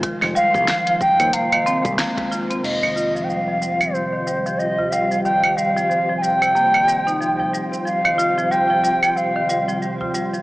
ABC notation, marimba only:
X:1
M:4/4
L:1/16
Q:"Swing 16ths" 1/4=92
K:Ab
V:1 name="Marimba" clef=bass
E, E, G, F, F, F, G, C, B, E, C A, B, A, F C | F, E, F F, G, F, G, F, C, E, G, F, G, F G, F, | E, E, G, F, F, F, G, C, B, E, G, E F, F, G, C, | F, E, F F, G, F, G, F, C, E, G, F, G, F G, F, |]